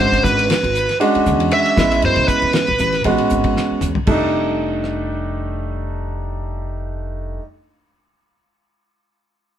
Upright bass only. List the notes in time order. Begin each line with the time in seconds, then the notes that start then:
Already playing: G#1
0.12 G#1
0.24 G#1
0.63 G#1
1.15 muted upright bass stroke
1.26 E2
1.78 A1
2.03 F#2
2.16 C#2
2.28 muted upright bass stroke
2.42 A2
2.68 A1
2.80 A1
3.05 A1
3.31 G#1
3.71 muted upright bass stroke
3.81 E2
4.07 F1